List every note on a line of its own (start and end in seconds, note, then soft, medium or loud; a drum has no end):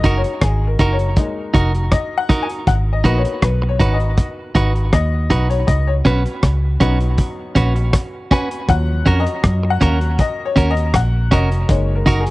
0.00 1.15 G#3 medium
0.00 1.16 A#3 soft
0.00 1.16 D#4 medium
0.00 0.21 D#4 loud
0.00 0.15 D#5 loud
0.00 closed hi-hat medium
0.04 0.23 F#1 medium
0.04 0.21 F#4 loud
0.04 0.22 A#4 loud
0.04 kick medium
0.17 0.40 C#5 medium
0.24 closed hi-hat medium
0.41 0.78 G#1 loud
0.41 0.65 G#4 medium
0.41 kick loud
0.41 cross-stick loud
0.41 closed hi-hat medium
0.67 0.73 A#4 medium
0.79 1.15 F#1 medium
0.79 0.96 D#4 medium
0.79 0.97 F#4 medium
0.79 0.97 A#4 loud
0.79 kick medium
0.79 closed hi-hat medium
0.93 1.27 C#5 medium
0.99 closed hi-hat soft
1.16 1.51 G#3 soft
1.16 1.51 A#3 soft
1.16 1.51 D#4 medium
1.16 kick loud
1.16 closed hi-hat medium
1.54 1.90 F1 medium
1.54 1.71 D#4 medium
1.54 1.71 F#4 medium
1.54 1.72 A#4 medium
1.54 kick loud
1.54 closed hi-hat medium
1.74 closed hi-hat soft
1.92 2.18 D#5 medium
1.92 kick loud
1.92 cross-stick loud
1.92 closed hi-hat loud
2.18 2.41 F#5 loud
2.29 2.46 D#4 medium
2.29 2.47 F#4 medium
2.29 2.47 A#4 medium
2.29 kick loud
2.29 closed hi-hat medium
2.43 2.48 G#5 loud
2.49 closed hi-hat medium
2.67 3.03 G#1 medium
2.67 2.73 F#5 loud
2.67 kick loud
2.67 closed hi-hat medium
2.93 3.18 D#5 medium
3.04 3.24 A#1 loud
3.04 5.64 A#3 medium
3.04 5.64 B3 soft
3.04 3.21 D#4 loud
3.04 3.22 F#4 medium
3.04 5.65 F#4 medium
3.04 3.22 B4 loud
3.04 kick medium
3.04 closed hi-hat medium
3.18 3.44 C#5 medium
3.25 closed hi-hat medium
3.42 3.78 B1 medium
3.42 3.69 B4 medium
3.42 kick loud
3.42 cross-stick loud
3.42 closed hi-hat medium
3.62 muted clean electric guitar stroke medium
3.69 3.92 C#5 medium
3.79 4.16 G#1 medium
3.79 3.96 D#4 medium
3.79 3.97 F#4 medium
3.79 3.97 B4 medium
3.79 kick medium
3.79 closed hi-hat medium
3.94 4.28 D#5 medium
4.00 closed hi-hat soft
4.17 kick loud
4.17 closed hi-hat medium
4.55 4.91 G#1 medium
4.55 4.72 D#4 medium
4.55 4.72 F#4 medium
4.55 4.73 B4 medium
4.55 kick loud
4.55 closed hi-hat medium
4.75 closed hi-hat soft
4.93 5.29 D#2 medium
4.93 5.46 D#5 loud
4.93 kick loud
4.93 cross-stick loud
4.93 closed hi-hat loud
5.30 5.66 B1 medium
5.30 5.47 D#4 medium
5.30 5.47 F#4 medium
5.30 5.48 B4 medium
5.30 kick loud
5.30 closed hi-hat medium
5.50 5.67 C#5 medium
5.50 closed hi-hat medium
5.67 6.04 C#2 loud
5.67 5.88 D#5 loud
5.67 kick loud
5.67 closed hi-hat medium
5.87 5.92 C#5 medium
6.05 6.25 B1 medium
6.05 6.22 C#4 medium
6.05 6.22 F#4 medium
6.05 6.40 B4 medium
6.05 6.23 B4 loud
6.05 kick medium
6.05 closed hi-hat medium
6.26 closed hi-hat medium
6.43 6.79 C#2 loud
6.43 kick loud
6.43 cross-stick loud
6.43 closed hi-hat medium
6.80 7.17 B1 medium
6.80 7.89 F#3 medium
6.80 7.90 B3 medium
6.80 6.97 C#4 medium
6.80 7.90 D#4 medium
6.80 6.98 F#4 medium
6.80 6.98 B4 medium
6.80 kick loud
6.80 closed hi-hat medium
7.00 closed hi-hat soft
7.18 kick loud
7.18 closed hi-hat medium
7.55 7.92 A#1 loud
7.55 7.72 C#4 medium
7.55 7.73 F#4 loud
7.55 7.73 B4 medium
7.55 kick loud
7.55 closed hi-hat medium
7.76 muted clean electric guitar stroke medium
7.76 closed hi-hat soft
7.93 kick loud
7.93 cross-stick loud
7.93 closed hi-hat loud
8.31 8.48 C#4 medium
8.31 8.48 F#4 medium
8.31 8.49 B4 loud
8.31 8.70 G#5 loud
8.31 kick loud
8.31 closed hi-hat medium
8.51 closed hi-hat medium
8.68 9.04 D#2 loud
8.68 11.66 F3 medium
8.68 9.80 F#3 medium
8.68 9.81 C#4 medium
8.68 9.21 F#5 loud
8.68 kick loud
8.68 closed hi-hat medium
9.06 9.25 F2 loud
9.06 9.23 C#4 medium
9.06 9.23 F#4 loud
9.06 9.23 A#4 loud
9.06 kick medium
9.06 closed hi-hat medium
9.20 9.71 D#5 loud
9.26 closed hi-hat medium
9.44 9.80 F#2 loud
9.44 kick loud
9.44 cross-stick loud
9.44 closed hi-hat medium
9.63 muted clean electric guitar stroke soft
9.70 10.21 F#5 loud
9.81 10.17 D#2 medium
9.81 10.15 F#3 medium
9.81 9.98 C#4 medium
9.81 10.16 C#4 soft
9.81 9.98 F#4 loud
9.81 9.99 A#4 loud
9.81 10.16 F5 medium
9.81 kick medium
9.81 cross-stick medium
9.81 closed hi-hat medium
10.01 closed hi-hat soft
10.19 10.45 D#5 loud
10.19 kick loud
10.19 closed hi-hat medium
10.45 10.70 C#5 loud
10.56 10.92 D#2 medium
10.56 10.73 C#4 medium
10.56 10.73 F#4 medium
10.56 10.74 A#4 medium
10.56 kick loud
10.56 closed hi-hat medium
10.70 10.95 D#5 loud
10.77 closed hi-hat soft
10.94 11.30 A#1 medium
10.94 11.33 F#5 medium
10.94 kick loud
10.94 cross-stick loud
10.94 closed hi-hat loud
11.31 11.67 F1 medium
11.31 11.48 C#4 medium
11.31 11.48 F#4 medium
11.31 11.49 A#4 medium
11.31 11.67 D#5 medium
11.31 kick loud
11.31 closed hi-hat medium
11.51 closed hi-hat medium
11.68 12.05 F#1 loud
11.68 12.19 G#3 medium
11.68 12.20 A#3 medium
11.68 12.20 D#4 medium
11.68 11.95 C#5 medium
11.68 kick loud
11.68 closed hi-hat medium
11.95 12.20 A#4 medium
12.06 12.26 F#1 medium
12.06 12.23 D#4 medium
12.06 12.23 F#4 loud
12.06 12.24 A#4 loud
12.06 kick medium
12.06 closed hi-hat medium
12.20 12.30 G#4 medium
12.26 closed hi-hat medium